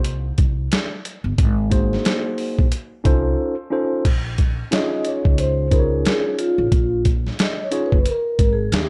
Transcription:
0.00 0.31 C2 medium
0.04 closed hi-hat loud
0.38 0.67 C2 medium
0.38 kick medium
0.38 closed hi-hat medium
0.72 snare loud
0.72 closed hi-hat medium
1.05 closed hi-hat medium
1.24 1.36 G1 medium
1.38 1.95 G#1 medium
1.38 kick loud
1.38 closed hi-hat loud
1.70 2.66 A#3 medium
1.70 2.66 D#4 medium
1.70 2.66 F#4 medium
1.70 2.66 G#4 medium
1.70 2.67 C5 medium
1.70 kick medium
1.70 closed hi-hat medium
1.93 snare soft
2.05 snare loud
2.05 closed hi-hat loud
2.38 open hi-hat soft
2.59 2.70 A#1 medium
2.59 kick medium
2.72 closed hi-hat loud
3.04 3.33 C2 medium
3.04 3.54 C#4 medium
3.04 3.54 D#4 medium
3.04 3.54 F4 medium
3.04 3.54 A4 medium
3.04 3.55 C5 loud
3.04 kick medium
3.04 closed hi-hat medium
3.71 4.05 C#4 medium
3.71 4.05 D#4 medium
3.71 4.05 F4 medium
3.71 4.05 A4 medium
3.71 4.06 C5 medium
4.05 4.61 A#1 medium
4.05 kick loud
4.05 closed hi-hat medium
4.05 crash medium
4.38 kick medium
4.38 closed hi-hat medium
4.71 5.66 C#4 medium
4.71 5.66 D#4 medium
4.71 5.67 F4 medium
4.71 5.67 G#4 medium
4.71 5.67 C#5 medium
4.71 5.07 D#5 medium
4.71 snare loud
4.71 closed hi-hat loud
5.05 5.37 C#5 medium
5.05 closed hi-hat medium
5.25 6.01 C#2 medium
5.25 kick medium
5.38 5.73 C5 medium
5.38 closed hi-hat loud
5.71 6.66 C#4 medium
5.71 6.66 D#4 medium
5.71 6.66 F4 medium
5.71 6.67 G#4 medium
5.71 6.06 A#4 medium
5.71 5.80 C5 medium
5.71 kick medium
5.71 closed hi-hat medium
5.79 6.70 C#5 medium
6.05 6.36 G#4 medium
6.05 snare loud
6.05 closed hi-hat medium
6.38 7.01 F4 medium
6.38 closed hi-hat medium
6.58 6.70 A1 medium
6.72 7.28 A#1 medium
6.72 kick loud
6.72 closed hi-hat medium
7.05 kick medium
7.05 closed hi-hat medium
7.27 snare soft
7.39 7.63 D#5 medium
7.39 snare loud
7.39 closed hi-hat loud
7.64 7.85 C#5 medium
7.71 7.97 C#4 medium
7.71 7.97 D#4 medium
7.71 7.97 F4 medium
7.71 7.97 G#4 medium
7.71 7.98 C#5 medium
7.71 closed hi-hat medium
7.86 8.07 B4 medium
7.92 8.04 F#1 medium
7.92 kick medium
8.06 8.53 A#4 loud
8.06 closed hi-hat medium
8.39 8.67 G#1 medium
8.39 kick medium
8.39 closed hi-hat medium
8.53 8.74 G#4 medium
8.72 8.89 D#2 loud
8.72 8.89 G4 medium
8.72 snare loud
8.72 closed hi-hat loud

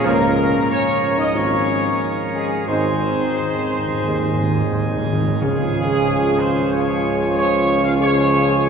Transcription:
0.03 0.58 C#2 loud
0.03 5.42 G#2 medium
0.03 0.26 F3 loud
0.03 2.64 F3 medium
0.03 0.26 A#3 medium
0.03 0.65 A#3 medium
0.03 2.64 C#4 medium
0.03 2.64 A#4 medium
0.03 0.70 A#4 loud
0.70 1.04 C#4 medium
0.70 1.15 C#5 loud
1.17 1.33 D#4 medium
1.17 1.33 D#5 loud
1.34 1.89 G#1 medium
1.34 1.57 F3 medium
1.34 1.57 A#3 medium
1.34 2.34 C#4 medium
1.34 2.18 C#5 loud
2.34 2.66 G#3 medium
2.34 2.66 G#4 medium
2.67 3.25 G#1 medium
2.67 2.75 G#2 soft
2.67 5.42 D#3 medium
2.67 2.93 D#3 medium
2.67 2.93 G#3 medium
2.67 5.03 C4 medium
2.67 5.42 D#4 medium
2.67 5.40 G#4 medium
2.67 5.03 C5 loud
2.76 2.83 G#2 soft
2.84 2.91 G#2 soft
2.92 2.99 G#2 soft
3.00 3.06 G#2 soft
3.16 3.22 G#2 soft
3.24 3.30 G#2 soft
3.31 3.38 G#2 medium
3.39 3.46 G#2 soft
3.47 3.53 G#2 soft
3.54 3.61 G#2 medium
3.63 3.70 G#2 medium
3.71 3.77 G#2 medium
3.79 3.85 G#2 medium
3.86 3.93 G#2 medium
3.94 4.01 G#2 medium
4.02 4.61 D#2 medium
4.02 4.09 G#2 medium
4.02 4.28 D#3 medium
4.02 4.29 G#3 medium
4.10 4.16 G#2 medium
4.17 4.24 G#2 medium
4.25 4.33 G#2 medium
4.34 4.40 G#2 medium
4.41 4.47 G#2 medium
4.49 4.56 G#2 medium
4.57 4.63 G#2 medium
4.64 4.72 G#2 loud
4.73 4.79 G#2 loud
4.80 4.87 G#2 medium
4.88 4.96 G#2 medium
4.97 5.03 G#2 loud
5.04 5.12 G#2 loud
5.13 5.19 G#2 loud
5.20 5.26 G#2 loud
5.28 5.35 G#2 loud
5.41 8.69 C#2 medium
5.41 6.68 C#3 medium
5.41 8.69 C#3 medium
5.41 6.36 C#3 loud
5.41 6.68 F3 medium
5.41 8.69 F3 medium
5.41 8.69 C#4 medium
5.41 6.36 G#4 loud
5.41 8.69 G#4 medium
6.39 6.72 C5 loud
6.72 7.34 C#3 medium
6.72 7.34 F3 medium
6.72 7.97 F4 loud
6.72 7.36 C#5 medium
7.37 7.97 C#3 medium
7.37 7.97 F3 medium
7.37 7.82 C#5 loud
7.84 7.92 F5 loud
8.00 8.69 C#3 medium
8.00 8.69 F3 medium
8.00 8.69 G#4 loud
8.00 8.69 C#5 loud

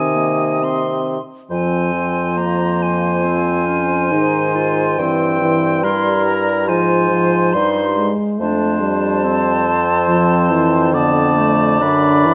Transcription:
0.00 1.18 C3 medium
0.00 1.19 D#3 medium
0.00 0.17 C4 medium
0.00 1.21 D#5 medium
0.00 0.65 G#5 medium
0.15 0.60 A#3 medium
0.61 1.19 C4 soft
0.61 1.22 C6 medium
1.49 4.14 F2 medium
1.49 1.91 F3 medium
1.49 2.38 C4 medium
1.49 5.86 C5 medium
1.49 2.39 G#5 medium
1.93 4.13 F3 medium
2.37 3.26 A#3 medium
2.37 2.84 A#5 medium
2.82 5.00 G#5 medium
3.24 3.68 C4 medium
3.67 4.13 C#4 medium
4.11 4.98 G#2 medium
4.11 4.99 D#3 medium
4.11 4.57 D#4 medium
4.55 4.99 F4 medium
4.98 6.71 G2 medium
4.98 5.41 E3 medium
4.98 5.84 C4 medium
4.98 5.85 G5 medium
5.41 5.85 E3 medium
5.84 6.70 G3 medium
5.84 6.72 E4 medium
5.84 6.68 A#4 medium
5.84 6.25 C6 medium
6.26 6.70 A#5 medium
6.68 7.54 G#2 medium
6.68 7.11 F3 medium
6.68 7.54 F4 medium
6.68 8.09 C5 medium
6.68 7.55 G#5 medium
7.11 7.56 F3 medium
7.53 8.11 G2 medium
7.53 7.84 G3 medium
7.53 8.11 D#4 medium
7.53 8.12 C6 medium
7.96 8.40 G#3 medium
8.39 11.84 F2 medium
8.39 8.82 A3 medium
8.39 9.26 D4 medium
8.39 10.96 C5 medium
8.39 10.91 A5 medium
8.80 9.80 G3 medium
9.25 10.96 C4 medium
10.08 10.51 F3 medium
10.50 10.96 E3 medium
10.94 11.81 D3 medium
10.94 11.39 B3 medium
10.94 12.34 D5 medium
10.94 11.84 A5 medium
11.37 11.80 A3 medium
11.80 12.34 F#2 medium
11.80 12.27 D3 medium
11.80 12.34 D4 medium
11.80 12.34 B5 medium
12.25 12.34 E3 medium

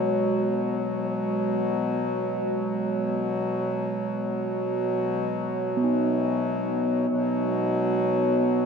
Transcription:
0.00 7.07 B2 soft
0.00 7.06 F#3 soft
0.00 5.27 G#3 soft
0.00 0.28 B3 soft
5.77 8.66 B3 soft
5.83 8.66 D#4 soft
7.08 8.66 B2 medium
7.08 8.66 F#3 medium

